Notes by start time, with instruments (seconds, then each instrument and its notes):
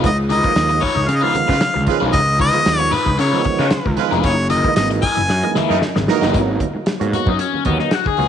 Already playing: tonewheel organ D#3 F3 G#3 B3
0.04 picked electric bass C#2, harmonica D#5, kick, closed hi-hat, low conga
0.18 muted conga
0.29 overdriven electric guitar D#4 F4 B4, harmonica D#5, closed hi-hat, high conga
0.43 tonewheel organ D#3 F3 G#3 A#3, kick, high conga
0.56 picked electric bass D#2, snare, closed hi-hat
0.69 muted overdriven electric guitar stroke, closed hi-hat, muted conga
0.81 overdriven electric guitar D#4 F4 B4, harmonica C#5, kick, open hi-hat, low conga
0.96 picked electric bass C#2, muted overdriven electric guitar stroke, low conga
1.08 picked electric bass C#3, harmonica F5, muted overdriven electric guitar stroke, closed hi-hat, muted conga
1.16 harmonica D#5
1.21 tonewheel organ D#3 F3 G#3 B3, overdriven electric guitar D#4 F4 B4, harmonica F5, muted conga
1.35 muted overdriven electric guitar stroke, muted picked electric bass stroke, closed hi-hat, high conga
1.48 picked electric bass C#3, horn section G#3 F4 B4, muted overdriven electric guitar stroke, kick, snare
1.59 muted overdriven electric guitar stroke, muted picked electric bass stroke, snare, closed hi-hat
1.74 picked electric bass C#2, muted overdriven electric guitar stroke, muted conga, high conga
1.87 tonewheel organ D#3 F3 G#3 C#4, horn section G#3 F4 B4, kick, closed hi-hat
2.00 picked electric bass B1, overdriven electric guitar D#4 F4 B4
2.13 picked electric bass C#2, harmonica D#5, kick, closed hi-hat, muted conga, low conga
2.28 muted conga
2.39 overdriven electric guitar D#4 F4 B4, harmonica D#5, kick, closed hi-hat, high conga
2.53 tonewheel organ D#3 F3 G#3 B3, closed hi-hat, high conga
2.66 picked electric bass D#2, snare, closed hi-hat
2.79 harmonica C#5, muted overdriven electric guitar stroke, closed hi-hat
2.91 overdriven electric guitar D#4 F4 B4, harmonica B4, snare, closed hi-hat, low conga
3.06 picked electric bass C#2, muted overdriven electric guitar stroke, kick, low conga
3.18 picked electric bass C#3, overdriven electric guitar D#4 F4 B4, harmonica C#5, closed hi-hat, muted conga
3.32 tonewheel organ D#3 F3 G#3 B3, snare
3.44 muted overdriven electric guitar stroke, muted picked electric bass stroke, kick, closed hi-hat, high conga
3.59 picked electric bass C#3, horn section G#3 F4 B4, overdriven electric guitar D#4 F4 C#5, snare
3.71 muted overdriven electric guitar stroke, muted picked electric bass stroke, snare, closed hi-hat, muted conga
3.85 picked electric bass C#2, muted overdriven electric guitar stroke, kick, muted conga, high conga
3.97 tonewheel organ D#3 F3 G#3 B3, horn section G#3 F4 B4, closed hi-hat
4.11 picked electric bass F1, overdriven electric guitar D#4 F4 B4, snare
4.24 picked electric bass F#1, harmonica C#5, kick, closed hi-hat, muted conga, low conga
4.50 overdriven electric guitar E4 A#4 D#5, harmonica D#5, closed hi-hat, high conga
4.64 tonewheel organ E3 G#3 A#3 D#4, kick, high conga
4.76 picked electric bass G#1, harmonica D#5, snare, closed hi-hat
4.91 muted overdriven electric guitar stroke, closed hi-hat, muted conga
5.02 overdriven electric guitar E4 A#4 D#5, harmonica G#5, kick, closed hi-hat, low conga
5.16 picked electric bass F#1, muted overdriven electric guitar stroke, low conga
5.29 picked electric bass F#2, muted overdriven electric guitar stroke, snare
5.43 tonewheel organ E3 G#3 A#3 D#4, muted overdriven electric guitar stroke
5.55 overdriven electric guitar E4 A#4 E5, muted picked electric bass stroke, snare, high conga
5.69 picked electric bass F#2, horn section E3 D#4 A#4, overdriven electric guitar E4 A#4 E5
5.81 muted overdriven electric guitar stroke, muted picked electric bass stroke, snare, muted conga
5.96 picked electric bass G#1, muted overdriven electric guitar stroke, snare, high conga
6.08 tonewheel organ E3 G#3 A#3 D#4, horn section F#3 D#4 A#4, snare
6.21 picked electric bass F#1, overdriven electric guitar E4 A#4 D#5, snare
6.34 picked electric bass G#1, tonewheel organ F#3 A#3 B3 D#4, kick, closed hi-hat, muted conga, low conga
6.60 kick, closed hi-hat, high conga
6.75 muted picked electric bass stroke
6.86 muted picked electric bass stroke, snare, closed hi-hat
7.00 picked electric bass G#2, tonewheel organ F#3 A#3 B3 D#4, closed hi-hat
7.13 overdriven electric guitar F#4, snare, closed hi-hat, low conga
7.26 picked electric bass F#2, overdriven electric guitar D#4, kick, low conga
7.39 overdriven electric guitar C#4, closed hi-hat
7.53 muted picked electric bass stroke, muted conga
7.65 picked electric bass D#2, tonewheel organ F#3 A#3 B3 D#4, overdriven electric guitar B3, kick, closed hi-hat, high conga
7.79 overdriven electric guitar D#4, snare
7.91 overdriven electric guitar F#4, snare, closed hi-hat
8.05 overdriven electric guitar G#4, kick, high conga
8.17 picked electric bass C#2, tonewheel organ F#3 A#3 B3 F4, open hi-hat